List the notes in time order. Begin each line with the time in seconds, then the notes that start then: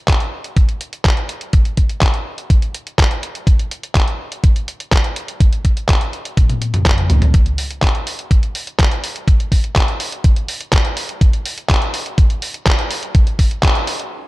0.08 kick, clap, closed hi-hat
0.20 closed hi-hat
0.44 closed hi-hat
0.57 kick, closed hi-hat
0.69 closed hi-hat
0.81 closed hi-hat
0.93 closed hi-hat
1.05 kick, clap, closed hi-hat
1.17 closed hi-hat
1.29 closed hi-hat
1.41 closed hi-hat
1.53 kick, closed hi-hat
1.65 closed hi-hat
1.77 kick, closed hi-hat
1.89 closed hi-hat
2.02 kick, clap, closed hi-hat
2.14 closed hi-hat
2.38 closed hi-hat
2.50 kick, closed hi-hat
2.62 closed hi-hat
2.74 closed hi-hat
2.87 closed hi-hat
2.98 kick, clap, closed hi-hat
3.11 closed hi-hat
3.23 closed hi-hat
3.35 closed hi-hat
3.47 kick, closed hi-hat
3.59 closed hi-hat
3.71 closed hi-hat
3.83 closed hi-hat
3.95 kick, clap, closed hi-hat
4.08 closed hi-hat
4.32 closed hi-hat
4.44 kick, closed hi-hat
4.56 closed hi-hat
4.68 closed hi-hat
4.80 closed hi-hat
4.92 kick, clap, closed hi-hat
5.04 closed hi-hat
5.16 closed hi-hat
5.28 closed hi-hat
5.40 kick, closed hi-hat
5.53 closed hi-hat
5.65 kick, closed hi-hat
5.77 closed hi-hat
5.89 kick, clap, closed hi-hat
6.01 closed hi-hat
6.13 closed hi-hat
6.25 closed hi-hat
6.37 kick, closed hi-hat, high tom
6.50 closed hi-hat, high tom
6.62 closed hi-hat
6.74 closed hi-hat, mid tom
6.86 kick, clap, closed hi-hat, mid tom
6.98 closed hi-hat
7.10 closed hi-hat, mid tom
7.22 closed hi-hat, mid tom
7.34 kick, closed hi-hat
7.46 closed hi-hat
7.58 open hi-hat
7.71 closed hi-hat
7.82 kick, clap, closed hi-hat
7.95 closed hi-hat
8.07 open hi-hat
8.19 closed hi-hat
8.31 kick, closed hi-hat
8.43 closed hi-hat
8.55 open hi-hat
8.67 closed hi-hat
8.79 kick, clap, closed hi-hat
8.91 closed hi-hat
9.04 open hi-hat
9.16 closed hi-hat
9.28 kick, closed hi-hat
9.40 closed hi-hat
9.52 kick, open hi-hat
9.64 closed hi-hat
9.76 kick, clap, closed hi-hat
9.88 closed hi-hat
10.00 open hi-hat
10.12 closed hi-hat
10.24 kick, closed hi-hat
10.36 closed hi-hat
10.48 open hi-hat
10.61 closed hi-hat
10.73 kick, clap, closed hi-hat
10.85 closed hi-hat
10.97 open hi-hat
11.09 closed hi-hat
11.21 kick, closed hi-hat
11.33 closed hi-hat
11.46 open hi-hat
11.58 closed hi-hat
11.70 kick, clap, closed hi-hat
11.82 closed hi-hat
11.94 open hi-hat
12.06 closed hi-hat
12.18 kick, closed hi-hat
12.30 closed hi-hat
12.42 open hi-hat
12.54 closed hi-hat
12.66 kick, clap, closed hi-hat
12.79 closed hi-hat
12.91 open hi-hat
13.03 closed hi-hat
13.15 kick, closed hi-hat
13.27 closed hi-hat
13.39 kick, open hi-hat
13.51 closed hi-hat
13.63 kick, clap, closed hi-hat
13.75 closed hi-hat
13.87 open hi-hat
13.99 closed hi-hat